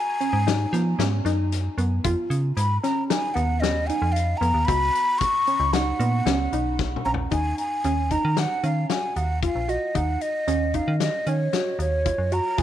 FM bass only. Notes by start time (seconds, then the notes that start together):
0.33 G#2
0.73 F3
0.99 G#2
1.25 F#2
1.78 F#2
2.04 F2
2.30 C#3
2.57 G#2
3.36 D#2
4.02 F2
4.41 F2
4.54 D#2
4.68 C#2
5.60 C#2
6.00 A#2
6.26 C#2
6.53 B1
7.06 A#1
7.31 D#2
7.85 D#2
8.25 D#3
8.64 D#3
9.16 D#2
9.55 A#1
9.95 D#2
10.48 D#2
10.88 D#3
11.27 D#3
11.79 D#2
12.18 F#2
12.58 D#2